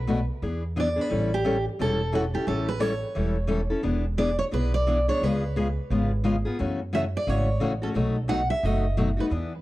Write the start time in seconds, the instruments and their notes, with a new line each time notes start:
Already playing: upright bass B1, steel-string acoustic guitar B4
0.07 steel-string acoustic guitar B2 F#3 A3 D4 F#4
0.42 upright bass E2, steel-string acoustic guitar E3 B3 D4 G#4
0.76 steel-string acoustic guitar E3 B3 D4 G#4 D5
0.96 steel-string acoustic guitar B3 D4 G#4
1.01 steel-string acoustic guitar B4
1.10 upright bass A1, steel-string acoustic guitar E3 G3 C#4 E4 A4
1.34 steel-string acoustic guitar G4
1.44 steel-string acoustic guitar E3 G3 C#4 E4 A4
1.79 upright bass E1, steel-string acoustic guitar E3 G3 C#4 E4 A4
2.12 steel-string acoustic guitar E3 G3 C#4 E4 F#4 A4
2.34 steel-string acoustic guitar C#4 E4 G4 A4
2.47 upright bass A1, steel-string acoustic guitar E3 G3 C#4 E4 A4
2.68 steel-string acoustic guitar B4
2.79 steel-string acoustic guitar E3 G3 C#4 E4 A4 C#5
3.15 upright bass E1, steel-string acoustic guitar E3 G3 C#4 E4 A4
3.47 steel-string acoustic guitar E3 G3 C#4 E4 A4
3.70 steel-string acoustic guitar C#4 E4 A4
3.83 upright bass E1, steel-string acoustic guitar E3 B3 D4 G#4
4.18 steel-string acoustic guitar E3 B3 D4 G#4 D5
4.39 steel-string acoustic guitar C#5
4.51 upright bass B1, steel-string acoustic guitar E3 B3 D4 G#4 B4
4.74 steel-string acoustic guitar D5
4.87 steel-string acoustic guitar E3 B3 D4 G#4
5.08 steel-string acoustic guitar B3 D4 G#4 C#5
5.21 upright bass C#2, steel-string acoustic guitar C#3 G#3 B3 F4 G#4 B4
5.56 steel-string acoustic guitar C#3 G#3 B3 F4 G#4
5.90 upright bass G#1, steel-string acoustic guitar C#3 G#3 B3 F4 G#4
6.24 steel-string acoustic guitar C#3 G#3 B3 F4 G#4
6.45 steel-string acoustic guitar B3 F4 G#4
6.59 upright bass F#2, steel-string acoustic guitar C#3 E3 A3 C#4 F#4
6.93 steel-string acoustic guitar C#3 E3 A3 C#4 F#4 E5
7.17 steel-string acoustic guitar D5
7.27 upright bass G#1, steel-string acoustic guitar C#3 E3 A3 C#4 F#4 C#5
7.60 upright bass A1, steel-string acoustic guitar C#3 E3 A3 C#4 F#4
7.82 steel-string acoustic guitar A3 C#4 F#4 A4
7.94 upright bass B1, steel-string acoustic guitar B2 F#3 A3 D#4 F#4
8.28 steel-string acoustic guitar B2 F#3 A3 D#4 F#4 F#5
8.50 steel-string acoustic guitar E5
8.63 upright bass F#1, steel-string acoustic guitar B2 F#3 A3 D#4 F#4 D#5
8.97 steel-string acoustic guitar B2 F#3 A3 D#4 F#4
9.17 steel-string acoustic guitar A3 D#4 F#4 B4
9.30 upright bass E2, steel-string acoustic guitar E3 B3 D4 G#4